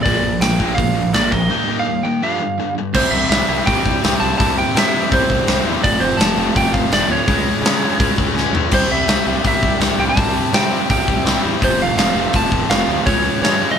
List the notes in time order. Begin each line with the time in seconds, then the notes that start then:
0.03 A#1 A#2 F3 A#3 D5, kick, open hi-hat
0.23 A#1 A#2 F3
0.40 A#1 A#2 F3 G5, snare, open hi-hat
0.60 A#1 A#2 F3 A#3, kick
0.75 A#1 F5, kick, open hi-hat
0.79 A#2 F3
0.95 A#1 A#2 F3
1.13 A#1 A#2 F3 A#3 D5, snare, open hi-hat
1.31 A#1 A#2 F3 D#5, kick
1.49 D#3 G3 A#3 D#4
1.68 D#3 G3 A#3 D#4
1.79 F5
1.86 D#3 G3 A#3
2.03 D#3 G3 A#3 G5
2.22 G2 D3 F3 G3 F5
2.40 G2 D3
2.58 G2 D3
2.75 G2 D3
2.93 C2 C3 E3 G3 C4 E4 C5, kick, crash
3.11 C2 E5
3.29 C2 C3 E3 G3 C4 E4 E5, snare, open hi-hat
3.47 C2 C3 E3 G3 C4 E4
3.66 C2 C3 E3 G3 C4 E4 G5, kick, open hi-hat
3.86 C2, kick
4.03 C2 C3 E3 G3 C4 E4, snare, open hi-hat
4.20 C2 C3 E3 G3 C4 E4 A5
4.38 C2 C3 E3 G3 C4 E4 A5, kick, open hi-hat
4.58 G5
4.75 C3 E3 G3 C4 E4 E5, snare, open hi-hat
4.93 C3 E3 G3 C4 E4
5.11 C2 C3 E3 G3 C4 E4 C5, kick, open hi-hat
5.30 C2, kick
5.47 C2 C3 E3 G3 C4 E4, snare, open hi-hat
5.65 E2 C3 E3 G3 C4 E4
5.82 F1 F2 C3 F3 A3 C4 F4 D5, kick, open hi-hat
6.00 F1 C5
6.17 F1 F2 C3 F3 A3 C4 F4 A5, snare, open hi-hat
6.36 F1 F2 C3 F3 A3 C4 F4
6.55 F1 F2 C3 F3 A3 C4 F4 G5, kick, open hi-hat
6.73 F1 F5, kick
6.90 F1 F2 C3 F3 A3 C4 F4 D5, snare, open hi-hat
7.07 D2 F2 C3 F3 A3 C4
7.12 F4 C#5
7.28 C#2 C#3 G#3 C#4 F4, kick, open hi-hat
7.62 C#3, open hi-hat
7.66 G#3 C#4 F4, snare
7.82 C#3 G#3 C#4 F4
7.99 C#2 C#3 G#3 C#4 F4, kick, open hi-hat
8.18 C#2, kick
8.34 C#2 C#3 G#3 C#4 F4
8.38 snare
8.52 F2 C#3 G#3 C#4 F4, floor tom
8.70 C2 C3 G3 C4 E4, kick, open hi-hat, crash
8.74 C5
8.88 C2 E5
9.07 C2 C3 G3 C4 E4, snare, open hi-hat
9.24 C2 C3 G3 C4 E4
9.43 C2 C3 G3 C4 E4, kick, open hi-hat
9.47 E5
9.63 C2, kick
9.79 C2 C3 G3 C4 E4, snare, open hi-hat
9.98 C2 C3 G3 C4 E4 G5
10.09 A5
10.16 C2 C3 G3 C4 E4, kick, open hi-hat
10.52 C3 G3 C4 E4 G5, snare, open hi-hat
10.70 C3 G3 C4 E4
10.90 C2 C3 G3 C4 E4 G5, kick, open hi-hat
11.08 C2, kick
11.25 C2 C3 G3 C4 E4, snare, open hi-hat
11.44 E2 C3 G3 C4 E4
11.62 F1 F2 C3 F3 A3 C4 C5, kick, open hi-hat
11.79 F1 F5
11.96 F1 F2 C3 F3 A3 C4 F5, snare, open hi-hat
12.15 F1 F2 C3 F3 A3 C4
12.33 F1 F2 C3 F3 A3 C4 A5, kick, open hi-hat
12.52 F1, kick
12.68 F1 F2 C3 F3 A3 C4 F5, snare, open hi-hat
12.87 D2 F2 C3 F3 A3 C4
13.05 C#2 C#3 F3 G#3 C#4 C#5, kick, open hi-hat
13.42 G2 C#3 F3 G#3 C#4 C#5, snare, open hi-hat
13.61 C#3 F3 G#3 C#4
13.71 D#5